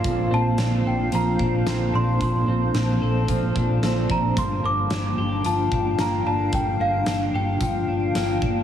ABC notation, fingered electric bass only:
X:1
M:4/4
L:1/8
Q:1/4=111
K:Gm
V:1 name="Fingered electric bass" clef=bass
B,,, B,,, B,,, B,,, B,,, B,,, B,,, B,,, | B,,, B,,, B,,, B,,, B,,, B,,, B,,, B,,, | G,,, G,,, G,,, G,,, G,,, G,,, G,,, G,,, | G,,, G,,, G,,, G,,, G,,, G,,, G,,, G,,, |]